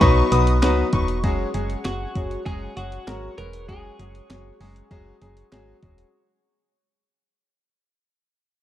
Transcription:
Already playing: B4 D#5 F#5 D#6
0.01 B1 F#3 B3 D#4 F#4 B4 C#6, kick, closed hi-hat
0.32 B1 F#3 B3 D#4 F#4 B4 D#6, closed hi-hat
0.47 closed hi-hat
0.62 C#2 F#3 B3 D#4 F#4 B4, snare, clap, closed hi-hat
0.93 E1 F#3 B3 D#4 F#4 B4 C#6, kick, closed hi-hat
1.08 closed hi-hat
1.24 F#1 F#3 G#3 C#4 F#4 G#4 C#5 F#5 C#6, kick, closed hi-hat
1.54 F#1 F#3 G#3 C#4 F#4 G#4, closed hi-hat
1.70 closed hi-hat
1.85 F#1 F#3 G#3 C#4 F#4 G#4, snare, clap, closed hi-hat
2.15 F#1 F#3 G#3 C#4 F#4 G#4, kick, closed hi-hat
2.31 closed hi-hat
2.46 F#1 F#3 G#3 C#4 F#4 G#4, kick, closed hi-hat
2.77 F#1 F#3 G#3 C#4 F#4 G#4, closed hi-hat
2.92 closed hi-hat
3.07 G#1 F#3 G#3 C#4 F#4 A#4, snare, clap, closed hi-hat
3.38 E1 F#3 G#3 C#4 F#4 A#4 B4, closed hi-hat
3.53 closed hi-hat
3.69 F#1 F#3 G#3 C#4 F#4 G#4, kick, closed hi-hat
3.99 F#1 F#3 G#3 C#4 F#4 G#4, closed hi-hat
4.15 closed hi-hat
4.30 F#1 F#3 G#3 C#4 F#4 G#4, snare, clap, closed hi-hat
4.60 F#1 F#3 G#3 C#4 F#4 G#4, open hi-hat
4.76 closed hi-hat
4.91 F#1 F#3 G#3 C#4 F#4 G#4, kick, closed hi-hat
5.22 F#1 F#3 G#3 C#4 F#4 G#4, closed hi-hat
5.37 closed hi-hat
5.52 G#1 F#3 G#3 C#4 F#4 G#4, snare, clap, closed hi-hat
5.83 E1 F#3 G#3 C#4 F#4 G#4, kick, closed hi-hat
5.98 closed hi-hat

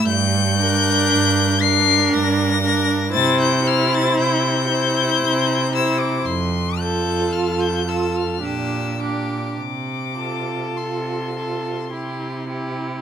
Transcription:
0.07 G2 G6
0.58 D4 A#4
1.12 G2
1.60 D4 A#4 C7
2.13 G2 A#6
2.63 D4 A#4
3.12 C3 E4 C5 A6
3.41 G6
3.64 E4 C5 F6
3.94 A6
4.18 C3 G6
4.69 E4 C5
5.21 C3
5.71 E4 C5 E6
5.99 D6
6.25 F2 C6
6.78 F4 A4 G6
7.31 F2 F6
7.60 G6
7.85 F4 A4 E6
8.16 F6
8.41 A#2 D4 G4 E6
8.98 D4 G4 D6
9.57 C3 D6
10.15 F4 A4
10.75 C3 C6
11.34 F4 A4
11.92 C3 E4 G4
12.48 E4 G4

